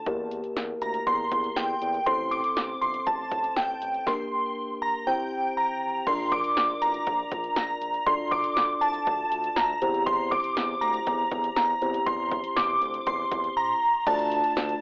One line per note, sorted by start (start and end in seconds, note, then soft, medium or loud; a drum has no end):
0.06 0.42 E2 loud
0.06 2.03 A#3 medium
0.06 2.03 E4 medium
0.06 2.03 G4 medium
0.06 2.03 A#4 medium
0.06 kick loud
0.06 closed hi-hat medium
0.32 closed hi-hat medium
0.44 closed hi-hat medium
0.57 0.74 E2 loud
0.57 snare loud
0.57 closed hi-hat medium
0.82 0.99 D2 medium
0.82 0.93 A#5 medium
0.82 closed hi-hat medium
0.94 closed hi-hat soft
1.07 1.24 E2 loud
1.07 1.58 C6 medium
1.07 kick medium
1.07 closed hi-hat medium
1.32 1.49 E2 loud
1.32 kick medium
1.32 closed hi-hat medium
1.44 closed hi-hat soft
1.56 1.74 E2 loud
1.56 2.08 G5 medium
1.56 snare loud
1.56 closed hi-hat medium
1.82 1.99 E2 loud
1.82 closed hi-hat medium
1.94 closed hi-hat soft
2.06 2.42 A1 medium
2.06 4.03 C4 medium
2.06 4.03 E4 medium
2.06 4.03 A4 medium
2.06 4.03 C5 medium
2.06 2.32 C6 loud
2.06 kick loud
2.06 closed hi-hat medium
2.31 2.78 D6 loud
2.31 closed hi-hat medium
2.44 closed hi-hat medium
2.57 2.74 A1 medium
2.57 snare loud
2.57 closed hi-hat medium
2.81 2.99 G1 medium
2.81 2.93 C6 medium
2.81 closed hi-hat medium
2.94 closed hi-hat soft
3.07 3.24 A1 loud
3.07 3.53 A5 medium
3.07 kick medium
3.07 closed hi-hat medium
3.32 3.49 A1 loud
3.32 kick medium
3.32 closed hi-hat medium
3.44 closed hi-hat soft
3.56 3.74 A1 loud
3.56 4.03 G5 medium
3.56 snare loud
3.56 closed hi-hat medium
3.82 3.99 A1 loud
3.82 closed hi-hat medium
3.94 closed hi-hat soft
4.07 5.05 A#3 medium
4.07 5.05 D4 medium
4.07 5.05 G4 medium
4.07 5.05 A#4 medium
4.07 4.53 C6 medium
4.07 kick loud
4.07 snare medium
4.82 4.93 A#5 medium
5.07 6.05 C4 medium
5.07 6.05 E4 medium
5.07 6.05 G4 medium
5.07 6.05 C5 medium
5.07 5.78 G5 medium
5.57 6.08 A#5 medium
6.07 6.42 A#1 loud
6.07 8.03 D4 medium
6.07 8.03 F4 medium
6.07 8.03 A#4 medium
6.07 8.03 D5 medium
6.07 6.32 C6 loud
6.07 kick loud
6.07 closed hi-hat medium
6.07 crash medium
6.32 6.78 D6 loud
6.32 kick medium
6.32 closed hi-hat medium
6.44 closed hi-hat medium
6.57 6.74 A#1 loud
6.57 snare loud
6.57 closed hi-hat medium
6.82 6.99 A1 medium
6.82 7.53 A#5 medium
6.82 closed hi-hat medium
6.94 closed hi-hat soft
7.07 7.24 A#1 loud
7.07 kick medium
7.07 closed hi-hat medium
7.32 7.49 A#1 loud
7.32 kick medium
7.32 closed hi-hat medium
7.44 closed hi-hat soft
7.56 7.74 A#1 loud
7.56 8.08 A#5 medium
7.56 snare loud
7.56 closed hi-hat medium
7.82 7.99 A#1 medium
7.82 closed hi-hat medium
7.94 closed hi-hat soft
8.06 8.42 D2 loud
8.06 9.78 D4 medium
8.06 9.78 F4 medium
8.06 9.78 A4 medium
8.06 9.78 D5 medium
8.06 8.32 C6 loud
8.06 kick loud
8.06 closed hi-hat medium
8.31 8.83 D6 loud
8.31 kick medium
8.31 closed hi-hat medium
8.44 closed hi-hat medium
8.57 8.74 D2 loud
8.57 snare loud
8.57 closed hi-hat medium
8.81 8.99 C2 loud
8.81 9.52 A5 medium
8.81 closed hi-hat medium
8.94 closed hi-hat soft
9.07 9.24 D2 loud
9.07 kick medium
9.07 closed hi-hat medium
9.32 9.49 D2 medium
9.32 closed hi-hat medium
9.44 closed hi-hat medium
9.56 9.74 D2 loud
9.56 10.08 A#5 medium
9.56 snare loud
9.56 closed hi-hat medium
9.82 10.34 E2 loud
9.82 11.78 C4 medium
9.82 11.78 E4 medium
9.82 11.78 G4 medium
9.82 11.78 C5 medium
9.82 closed hi-hat medium
9.94 closed hi-hat soft
10.06 10.32 C6 loud
10.06 kick loud
10.06 closed hi-hat medium
10.31 10.83 D6 loud
10.31 kick medium
10.31 closed hi-hat medium
10.44 closed hi-hat medium
10.57 10.74 E2 loud
10.57 snare loud
10.57 closed hi-hat medium
10.81 10.99 D2 loud
10.81 11.55 A#5 loud
10.81 closed hi-hat medium
10.94 closed hi-hat soft
11.07 11.24 E2 loud
11.07 kick medium
11.07 closed hi-hat medium
11.32 11.49 E2 loud
11.32 kick medium
11.32 closed hi-hat medium
11.44 closed hi-hat medium
11.56 11.74 E2 loud
11.56 12.08 A#5 medium
11.56 snare loud
11.56 closed hi-hat medium
11.82 11.99 E2 medium
11.82 13.78 C4 medium
11.82 13.78 E4 medium
11.82 13.78 G4 medium
11.82 13.78 C5 medium
11.82 closed hi-hat medium
11.94 closed hi-hat soft
12.06 12.42 E2 loud
12.06 12.58 C6 medium
12.06 kick loud
12.06 closed hi-hat medium
12.32 kick medium
12.32 closed hi-hat medium
12.44 closed hi-hat medium
12.57 12.74 E2 loud
12.57 13.08 D6 medium
12.57 snare loud
12.57 closed hi-hat medium
12.82 12.99 D2 medium
12.82 closed hi-hat medium
12.94 closed hi-hat soft
13.07 13.24 E2 loud
13.07 13.78 C6 medium
13.07 kick medium
13.07 closed hi-hat medium
13.32 13.49 E2 loud
13.32 kick medium
13.32 closed hi-hat medium
13.44 closed hi-hat soft
13.57 14.08 A#5 loud
14.07 14.42 D2 loud
14.07 14.81 A3 medium
14.07 14.81 D4 medium
14.07 14.81 F4 medium
14.07 14.81 D5 medium
14.07 14.81 A5 loud
14.07 kick loud
14.07 closed hi-hat medium
14.07 crash medium
14.19 closed hi-hat medium
14.32 closed hi-hat medium
14.44 closed hi-hat medium
14.57 14.74 D2 loud
14.57 snare loud
14.57 closed hi-hat medium
14.69 closed hi-hat soft